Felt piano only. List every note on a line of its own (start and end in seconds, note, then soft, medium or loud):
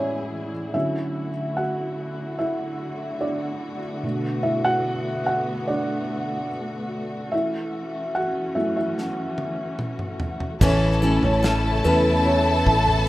0.00 0.71 A2 soft
0.00 0.71 G#3 soft
0.00 0.51 C#4 medium
0.00 0.75 E4 medium
0.00 0.76 F#4 medium
0.00 0.50 C#5 medium
0.00 0.76 D5 medium
0.00 0.74 E5 medium
0.00 0.76 F#5 medium
0.74 1.29 D3 soft
0.74 1.29 F#3 soft
0.74 1.30 C#4 soft
0.74 1.53 E4 medium
0.74 1.59 E5 medium
1.57 2.36 F#4 medium
1.57 2.41 F#5 medium
2.39 3.18 E4 medium
2.39 3.24 E5 medium
3.21 3.79 D4 medium
3.21 3.79 D5 medium
4.03 7.28 B2 soft
4.03 7.28 A3 soft
4.03 5.68 D4 soft
4.43 4.63 E4 medium
4.43 4.65 E5 medium
4.65 5.23 F#4 medium
4.65 5.23 F#5 loud
5.26 5.66 F#4 medium
5.26 5.69 F#5 medium
5.67 6.47 D4 medium
5.67 6.46 D5 medium
7.32 8.11 E4 medium
7.32 8.17 E5 medium
8.15 8.54 F#4 medium
8.15 8.57 F#5 medium
8.55 9.75 F#3 soft
8.55 9.75 A3 soft
8.55 8.77 E4 medium
8.55 8.75 E5 medium
8.77 10.17 E4 soft
8.77 10.16 E5 medium
10.62 11.02 C#4 medium
10.62 11.23 C#5 medium
11.02 11.57 E3 medium
11.02 11.57 A3 medium
11.02 11.23 C#4 medium
11.24 11.81 C#4 medium
11.24 11.87 C#5 medium
11.85 12.23 B3 medium
11.85 12.27 B4 medium
12.25 13.04 C#4 medium
12.25 13.08 C#5 medium